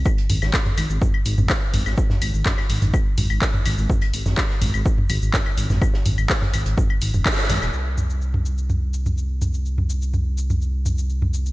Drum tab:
HH |--x-o-------o-------o-------o---|----o-------o-x-----o-------o---|--x-o-------o-------o-------o---|----o-------o-x-----o-------o---|
SH |x---x-x-x---x-x-x---x-x-x---x-x-|x---x-x-x---x-x-x---x-x-x---x-x-|x---x-x-x---x-x-x---x-x-x---x-x-|x---x-x-x---x-x-x---x-x-xxxxx-x-|
CL |x-----x-----x-----x-----x-----x-|----x-----x-----x-----x-----x---|--x-----x-----x-----x-----x-----|x-----x-----x-----x-----x-----x-|
CP |--------x---------------x-------|--------x---------------x-------|--------x---------------x-------|--------x---------------x-------|
SD |------o-o-o-------------o-----o-|--o-----o-o-------------o-------|------o-o-o-------------o-----o-|--o-----o-o-------------ooooo-o-|
T2 |----o-----o-----o-----o-----o---|--o-----o-----o-----o-----o-----|o-----o-----o-----o-----o-----o-|----o-----o-----o-----o-----o---|
BD |o-------o-------o-------o-------|o-------o-------o-------o-------|o-------o-------o-------o-------|o-------o-------o-------o-------|

HH |--------------------------------|--------------------------------|
SH |x---x-x-x---x-x-x---x-x-x---x-x-|x---x-x-x---x-x-x---x-x-x---x-x-|
CL |--------------------------------|--------------------------------|
CP |--------------------------------|--------------------------------|
SD |--------------------------------|--------------------------------|
T2 |----o-----o-----o-----o-----o---|--o-----o-----o-----o-----o-----|
BD |--------------------------------|--------------------------------|